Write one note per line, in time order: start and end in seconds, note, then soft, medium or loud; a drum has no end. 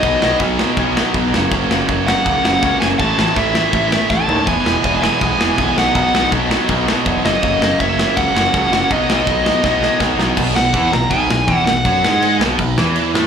0.00 0.14 B1 medium
0.00 0.21 B2 medium
0.00 0.22 F#3 loud
0.00 0.37 D#5 medium
0.00 kick loud
0.00 crash medium
0.04 0.22 B3 loud
0.04 0.22 D#4 loud
0.22 0.34 B1 medium
0.22 0.39 B2 loud
0.22 0.41 F#3 loud
0.22 0.40 B3 medium
0.22 0.41 D#4 loud
0.22 snare loud
0.40 0.63 B1 medium
0.40 0.58 B2 loud
0.40 0.59 F#3 loud
0.40 0.59 B3 loud
0.40 0.59 D#4 loud
0.40 kick loud
0.40 crash medium
0.59 0.76 B2 medium
0.59 0.76 F#3 loud
0.59 0.77 B3 medium
0.59 0.78 D#4 loud
0.59 snare loud
0.77 1.00 B1 medium
0.77 0.95 B2 medium
0.77 0.96 F#3 medium
0.77 0.96 B3 loud
0.77 0.97 D#4 loud
0.77 kick loud
0.77 crash medium
0.96 1.13 B2 medium
0.96 1.14 F#3 loud
0.96 1.14 B3 loud
0.96 1.15 D#4 loud
0.96 snare loud
1.14 1.35 B1 medium
1.14 1.32 B2 medium
1.14 1.32 F#3 medium
1.14 1.33 B3 medium
1.14 1.33 D#4 medium
1.14 kick loud
1.14 crash medium
1.33 1.45 F#1 loud
1.33 1.51 F#2 loud
1.33 1.51 C#3 loud
1.33 1.52 F#3 loud
1.33 1.52 A#3 loud
1.33 1.53 C#4 loud
1.33 snare loud
1.51 1.63 F#1 loud
1.51 1.68 F#2 loud
1.51 1.69 C#3 loud
1.51 1.70 F#3 loud
1.51 1.70 A#3 loud
1.51 1.71 C#4 loud
1.51 kick loud
1.51 crash medium
1.70 1.82 F#1 medium
1.70 1.87 F#2 medium
1.70 1.88 C#3 medium
1.70 1.88 F#3 medium
1.70 1.89 A#3 medium
1.70 1.89 C#4 loud
1.70 snare loud
1.88 2.12 F#1 loud
1.88 2.06 F#2 loud
1.88 2.06 C#3 medium
1.88 2.06 F#3 loud
1.88 2.07 A#3 loud
1.88 2.08 C#4 loud
1.88 kick loud
1.88 crash medium
2.07 2.24 F#2 medium
2.07 2.25 C#3 medium
2.07 2.25 F#3 medium
2.07 2.26 A#3 loud
2.07 2.26 C#4 medium
2.07 2.77 F#5 loud
2.07 snare loud
2.25 2.37 C#2 loud
2.25 2.42 F#2 medium
2.25 2.44 C#3 medium
2.25 2.43 F#3 medium
2.25 2.44 A#3 loud
2.25 2.44 C#4 loud
2.25 kick loud
2.25 crash medium
2.43 2.56 F#1 medium
2.43 2.61 F#2 medium
2.43 2.62 C#3 medium
2.43 2.63 F#3 medium
2.43 2.63 A#3 loud
2.43 2.63 C#4 medium
2.43 snare loud
2.62 2.74 C#2 loud
2.62 2.79 F#2 medium
2.62 2.80 C#3 medium
2.62 2.80 F#3 medium
2.62 2.81 A#3 medium
2.62 2.81 C#4 medium
2.62 kick loud
2.62 crash medium
2.80 2.93 F#1 medium
2.80 2.98 F#2 medium
2.80 2.99 C#3 medium
2.80 2.99 F#3 medium
2.80 2.99 A#3 loud
2.80 2.99 C#4 medium
2.80 2.86 G#5 loud
2.80 snare loud
2.99 3.11 A1 medium
2.99 3.16 A2 medium
2.99 3.18 E3 medium
2.99 3.17 A3 loud
2.99 3.18 C#4 loud
2.99 3.19 E4 loud
2.99 3.38 A5 loud
2.99 kick loud
2.99 crash medium
3.17 3.30 A1 medium
3.17 3.35 A2 medium
3.17 3.37 E3 medium
3.17 3.36 A3 medium
3.17 3.37 C#4 medium
3.17 3.38 E4 loud
3.17 snare loud
3.36 3.59 A1 medium
3.36 3.53 A2 medium
3.36 3.55 E3 loud
3.36 3.55 A3 loud
3.36 3.55 C#4 loud
3.36 3.56 E4 loud
3.36 4.13 E5 medium
3.36 kick loud
3.36 crash medium
3.55 3.72 A2 medium
3.55 3.73 E3 medium
3.55 3.73 A3 medium
3.55 3.73 C#4 loud
3.55 3.74 E4 loud
3.55 snare loud
3.73 3.96 A1 medium
3.73 3.91 A2 medium
3.73 3.91 E3 medium
3.73 3.92 A3 medium
3.73 3.92 C#4 loud
3.73 3.92 E4 loud
3.73 kick loud
3.73 crash medium
3.92 4.09 A2 medium
3.92 4.10 E3 medium
3.92 4.10 A3 loud
3.92 4.11 C#4 loud
3.92 4.11 E4 loud
3.92 snare loud
4.10 4.22 A1 medium
4.10 4.27 A2 medium
4.10 4.28 E3 medium
4.10 4.28 A3 medium
4.10 4.29 C#4 medium
4.10 4.29 E4 medium
4.10 4.45 A5 medium
4.10 kick loud
4.10 snare medium
4.28 4.40 D#2 medium
4.28 4.46 A2 medium
4.28 4.46 E3 medium
4.28 4.47 A3 medium
4.28 4.47 C#4 medium
4.28 4.47 E4 loud
4.28 floor tom loud
4.46 4.58 E1 medium
4.46 4.64 E2 loud
4.46 4.65 B2 loud
4.46 4.65 E3 loud
4.46 4.65 G#3 medium
4.46 4.67 B3 loud
4.46 4.67 E4 loud
4.46 5.02 G#5 loud
4.46 kick loud
4.46 crash medium
4.65 4.77 E1 medium
4.65 4.83 E2 medium
4.65 4.83 B2 medium
4.65 4.82 E3 medium
4.65 4.83 G#3 medium
4.65 4.84 B3 loud
4.65 4.84 E4 loud
4.65 snare loud
4.83 5.07 E1 medium
4.83 5.01 E2 loud
4.83 5.02 B2 loud
4.83 5.00 E3 medium
4.83 5.01 G#3 loud
4.83 5.01 B3 medium
4.83 5.02 E4 loud
4.83 kick loud
4.83 crash medium
5.01 5.19 E2 medium
5.01 5.20 B2 medium
5.01 5.19 E3 medium
5.01 5.19 G#3 medium
5.01 5.20 B3 medium
5.01 5.20 E4 loud
5.01 5.78 G#5 loud
5.01 snare loud
5.20 5.33 B1 medium
5.20 5.37 E2 medium
5.20 5.38 B2 medium
5.20 5.37 E3 medium
5.20 5.37 G#3 loud
5.20 5.38 B3 medium
5.20 5.38 E4 medium
5.20 kick loud
5.20 crash medium
5.38 5.51 E1 medium
5.38 5.56 E2 medium
5.38 5.56 B2 medium
5.38 5.56 E3 medium
5.38 5.57 G#3 medium
5.38 5.58 B3 medium
5.38 5.58 E4 loud
5.38 snare loud
5.57 5.69 B1 medium
5.57 5.75 E2 medium
5.57 5.74 B2 loud
5.57 5.75 E3 medium
5.57 5.76 G#3 medium
5.57 5.76 B3 medium
5.57 5.76 E4 loud
5.57 kick loud
5.57 crash medium
5.77 5.88 B1 medium
5.77 5.93 B2 medium
5.77 5.95 F#3 loud
5.77 5.94 B3 loud
5.77 5.95 D#4 loud
5.77 6.29 F#5 medium
5.77 snare loud
5.94 6.07 B1 loud
5.94 6.12 B2 loud
5.94 6.14 F#3 loud
5.94 6.13 B3 loud
5.94 6.14 D#4 medium
5.94 kick loud
5.94 crash medium
6.13 6.25 B1 medium
6.13 6.31 B2 loud
6.13 6.33 F#3 medium
6.13 6.32 B3 medium
6.13 6.33 D#4 loud
6.13 snare loud
6.32 6.55 B1 medium
6.32 6.50 B2 loud
6.32 6.51 F#3 loud
6.32 6.51 B3 loud
6.32 6.51 D#4 loud
6.32 kick loud
6.32 crash medium
6.51 6.68 B2 medium
6.51 6.69 F#3 medium
6.51 6.69 B3 medium
6.51 6.69 D#4 medium
6.51 snare loud
6.69 6.92 B1 medium
6.69 6.86 B2 medium
6.69 6.87 F#3 medium
6.69 6.87 B3 loud
6.69 6.88 D#4 loud
6.69 kick loud
6.69 crash medium
6.87 7.04 B2 medium
6.87 7.05 F#3 loud
6.87 7.05 B3 loud
6.87 7.05 D#4 medium
6.87 snare loud
7.05 7.18 E1 medium
7.05 7.23 B2 medium
7.05 7.24 F#3 medium
7.05 7.24 B3 medium
7.05 7.24 D#4 loud
7.05 kick loud
7.05 crash medium
7.23 7.36 F#1 medium
7.23 7.40 F#2 loud
7.23 7.41 C#3 medium
7.23 7.42 F#3 loud
7.23 7.42 A#3 loud
7.23 7.42 C#4 loud
7.23 7.80 D#5 loud
7.23 snare loud
7.41 7.54 F#1 loud
7.41 7.58 F#2 medium
7.41 7.59 C#3 loud
7.41 7.60 F#3 loud
7.41 7.60 A#3 medium
7.41 7.60 C#4 loud
7.41 kick loud
7.41 crash medium
7.59 7.73 F#1 medium
7.59 7.76 F#2 loud
7.59 7.77 C#3 medium
7.59 7.78 F#3 medium
7.59 7.78 A#3 loud
7.59 7.79 C#4 loud
7.59 snare loud
7.77 8.03 F#1 medium
7.77 7.96 F#2 loud
7.77 7.97 C#3 loud
7.77 7.98 F#3 loud
7.77 7.97 A#3 loud
7.77 7.98 C#4 loud
7.77 8.18 E5 loud
7.77 kick loud
7.77 crash medium
7.97 8.15 F#2 medium
7.97 8.15 C#3 medium
7.97 8.17 F#3 medium
7.97 8.16 A#3 loud
7.97 8.17 C#4 loud
7.97 snare loud
8.16 8.28 C#2 medium
8.16 8.32 F#2 medium
8.16 8.33 C#3 medium
8.16 8.34 F#3 medium
8.16 8.34 A#3 medium
8.16 8.34 C#4 loud
8.16 8.93 F#5 loud
8.16 kick loud
8.16 crash medium
8.33 8.46 F#1 medium
8.33 8.52 F#2 medium
8.33 8.53 C#3 loud
8.33 8.54 F#3 medium
8.33 8.54 A#3 medium
8.33 8.54 C#4 loud
8.33 snare loud
8.53 8.65 C#2 medium
8.53 8.71 F#2 medium
8.53 8.71 C#3 medium
8.53 8.72 F#3 medium
8.53 8.72 A#3 medium
8.53 8.72 C#4 medium
8.53 kick loud
8.53 crash medium
8.72 8.83 F#1 medium
8.72 8.89 F#2 medium
8.72 8.90 C#3 medium
8.72 8.91 F#3 loud
8.72 8.90 A#3 medium
8.72 8.90 C#4 loud
8.72 snare loud
8.90 9.02 B1 medium
8.90 9.07 B2 loud
8.90 9.07 F#3 medium
8.90 9.08 B3 loud
8.90 9.08 D#4 loud
8.90 9.98 D#5 medium
8.90 kick loud
8.90 crash medium
9.08 9.21 B1 medium
9.08 9.26 B2 medium
9.08 9.26 F#3 medium
9.08 9.27 B3 loud
9.08 9.27 D#4 medium
9.08 snare loud
9.27 9.50 B1 medium
9.27 9.43 B2 loud
9.27 9.44 F#3 medium
9.27 9.44 B3 loud
9.27 9.44 D#4 loud
9.27 kick loud
9.27 crash medium
9.44 9.62 B2 medium
9.44 9.62 F#3 medium
9.44 9.63 B3 medium
9.44 9.63 D#4 medium
9.44 snare loud
9.63 9.87 B1 medium
9.63 9.81 B2 medium
9.63 9.81 F#3 loud
9.63 9.82 B3 loud
9.63 9.82 D#4 medium
9.63 kick loud
9.63 snare medium
9.82 9.98 B2 medium
9.82 9.98 F#3 medium
9.82 9.99 B3 medium
9.82 9.99 D#4 loud
9.82 snare medium
9.99 10.12 B1 medium
9.99 10.17 B2 medium
9.99 10.18 F#3 medium
9.99 10.18 B3 medium
9.99 10.18 D#4 medium
9.99 kick loud
9.99 snare medium
10.18 10.30 B1 medium
10.18 10.35 B2 medium
10.18 10.36 F#3 medium
10.18 10.37 B3 medium
10.18 10.37 D#4 loud
10.18 snare medium
10.36 10.54 B1 medium
10.36 10.54 B2 loud
10.36 kick loud
10.36 crash loud
10.36 crash medium
10.55 10.73 B1 medium
10.55 10.71 B2 medium
10.55 10.94 F#5 loud
10.55 snare loud
10.73 10.91 E2 medium
10.73 10.92 E3 loud
10.73 kick loud
10.73 crash medium
10.92 11.10 B1 medium
10.92 11.08 B2 medium
10.92 11.12 A#5 loud
10.92 snare loud
11.10 11.28 B1 medium
11.10 11.29 B2 loud
11.10 11.55 G#5 loud
11.10 kick loud
11.10 crash medium
11.30 11.47 B1 medium
11.30 11.45 B2 medium
11.30 snare loud
11.47 11.65 E2 medium
11.47 11.66 E3 loud
11.47 kick loud
11.47 crash medium
11.55 11.65 F#5 loud
11.65 11.84 B1 medium
11.65 11.82 B2 medium
11.65 12.36 F#5 medium
11.65 snare loud
11.85 12.02 F#2 loud
11.85 12.03 F#3 loud
11.85 kick loud
11.85 crash medium
12.04 12.38 G#2 medium
12.04 12.40 G#3 loud
12.04 snare loud
12.22 crash medium
12.40 12.57 B1 medium
12.40 12.58 B2 loud
12.40 snare loud
12.58 12.76 B1 medium
12.58 12.74 B2 medium
12.58 kick medium
12.58 crash medium
12.78 13.12 E2 medium
12.78 13.14 E3 loud
12.78 snare loud
12.96 crash medium
13.14 13.27 A2 loud
13.14 13.27 A3 loud
13.14 snare loud